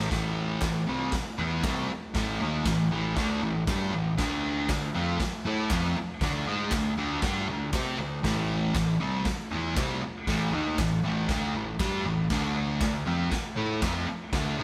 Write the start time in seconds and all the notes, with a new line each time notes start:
Already playing: E3 A3
0.10 A1 A2 E3 A3, kick, snare, open hi-hat
0.61 A1 A2 E3, kick, snare, clap, open hi-hat
0.87 C2 C3 G3 C4
1.12 muted picked electric bass stroke, muted distorted electric guitar stroke, kick, snare, open hi-hat
1.38 E2 E3 B3 E4
1.63 C2 C3 G3 C4, kick, snare, clap, open hi-hat
1.89 muted distorted electric guitar stroke, muted picked electric bass stroke
2.15 A1 A2 E3 A3, kick, snare, open hi-hat
2.40 D#2 D#3 A#3 D#4
2.65 A1 A2 E3, kick, snare, clap, open hi-hat
2.91 A1 A2 E3 A3
3.16 D2 D3 A3 D4, kick, snare, open hi-hat
3.42 A1 A2 E3
3.67 G2 G3 D4 G4, kick, snare, clap, open hi-hat
3.93 A1 A2 E3
4.18 D2 D3 A3 D4, kick, snare, open hi-hat
4.69 D2 D3 A3, kick, snare, clap, open hi-hat
4.95 F2 F3 C4 F4
5.20 muted distorted electric guitar stroke, kick, snare, open hi-hat
5.45 A2 A3 E4 A4
5.70 F2 F3 C4 F4, kick, snare, clap, open hi-hat
5.97 muted picked electric bass stroke, muted distorted electric guitar stroke
6.21 D2 D3 A3 D4, kick, snare, open hi-hat
6.47 G#2 G#3 D#4 G#4
6.71 D2 D3 A3, kick, snare, clap, open hi-hat
6.97 D2 D3 A3 D4
7.22 G2 G3 D4 G4, kick, snare, open hi-hat
7.48 D2 D3 A3
7.73 C3 C4 G4 C5, kick, snare, clap, open hi-hat
7.99 D2 D3 A3
8.23 A1 A2 E3 A3, kick, snare, open hi-hat
8.74 A1 A2 E3, kick, snare, clap, open hi-hat
9.00 C2 C3 G3 C4
9.25 muted picked electric bass stroke, muted distorted electric guitar stroke, kick, snare, open hi-hat
9.51 E2 E3 B3 E4
9.76 C2 C3 G3 C4, kick, snare, clap, open hi-hat
10.02 muted distorted electric guitar stroke, muted picked electric bass stroke
10.27 A1 A2 E3 A3, kick, snare, open hi-hat
10.53 D#2 D#3 A#3 D#4
10.78 A1 A2 E3, kick, snare, clap, open hi-hat
11.03 A1 A2 E3 A3
11.29 D2 D3 A3 D4, kick, snare, open hi-hat
11.55 A1 A2 E3
11.79 G2 G3 D4 G4, kick, snare, clap, open hi-hat
12.05 A1 A2 E3
12.30 D2 D3 A3 D4, kick, snare, open hi-hat
12.81 D2 D3 A3, kick, snare, clap, open hi-hat
13.06 F2 F3 C4 F4
13.31 muted distorted electric guitar stroke, kick, snare, open hi-hat
13.56 A2 A3 E4 A4
13.81 F2 F3 C4 F4, kick, snare, clap, open hi-hat
14.07 muted distorted electric guitar stroke, muted picked electric bass stroke
14.33 D2 D3 A3 D4, kick, snare, open hi-hat
14.59 G#2 G#3 D#4 G#4